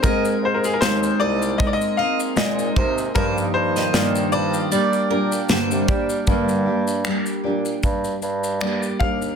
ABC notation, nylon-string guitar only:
X:1
M:4/4
L:1/8
Q:"Swing 16ths" 1/4=77
K:Gphr
V:1 name="Nylon-string guitar"
[A,CEB]2 [A,CEB]2 [A,CEB] [CEB] [A,CEB] [CEB] | [G,,E,F,B,EG]2 [G,,E,F,B,EG]2 [G,B,DG] [G,B,DG] [G,,D,G,B,DG] [G,B,DG] | [G,,D,G,B,DG] [G,B,DG] [G,B,DG] [G,B,DG]3 [G,B,DG] [G,B,DG] |]